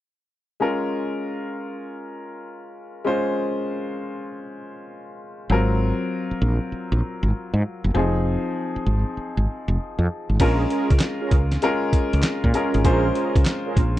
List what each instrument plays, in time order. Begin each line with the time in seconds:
0.60 grand piano G#3 C#4 F4 A#4
3.04 grand piano G#3 C#4 F4 C5
5.50 fretless electric bass G#1, grand piano F#3 C4 F4 A#4
6.31 muted fretless electric bass stroke
6.42 fretless electric bass A#1
6.72 muted fretless electric bass stroke
6.92 fretless electric bass A#1
7.23 fretless electric bass G#1
7.54 fretless electric bass G#2
7.84 fretless electric bass F#1
7.94 fretless electric bass F1, grand piano F3 C4 D#4 G#4
8.76 muted fretless electric bass stroke
8.86 fretless electric bass G#1
9.17 muted fretless electric bass stroke
9.37 fretless electric bass G#1
9.68 fretless electric bass F1
9.99 fretless electric bass F2
10.29 fretless electric bass G#1
10.39 fretless electric bass A#1, grand piano G#3 C#4 F4 A#4, analog polysynth C#4 F4 G#4 A#4, kick, closed hi-hat, crash
10.70 analog polysynth C#4 F4 G#4 A#4, closed hi-hat
10.90 fretless electric bass C#2, kick, closed hi-hat
11.00 snare, clap, closed hi-hat
11.21 analog polysynth C#4 F4 G#4 A#4
11.31 fretless electric bass C#2, kick, closed hi-hat
11.52 snare, closed hi-hat
11.62 grand piano G#3 C#4 F4 A#4, closed hi-hat
11.93 muted fretless electric bass stroke, kick, closed hi-hat
12.13 fretless electric bass C#2, closed hi-hat
12.23 snare, clap, closed hi-hat
12.44 fretless electric bass A#2, kick
12.53 grand piano G#3 C#4 F4 A#4, analog polysynth C#4 F4 G#4 A#4, closed hi-hat
12.74 fretless electric bass G#1, closed hi-hat
12.84 fretless electric bass A#1, grand piano G#3 C#4 F4 C5, analog polysynth C#4 F4 G#4 A#4, kick, closed hi-hat
13.14 analog polysynth C#4 F4 G#4 A#4, closed hi-hat
13.36 fretless electric bass C#2, kick, closed hi-hat
13.45 snare, clap, closed hi-hat
13.66 analog polysynth C#4 F4 G#4 A#4
13.76 fretless electric bass A#1, kick, closed hi-hat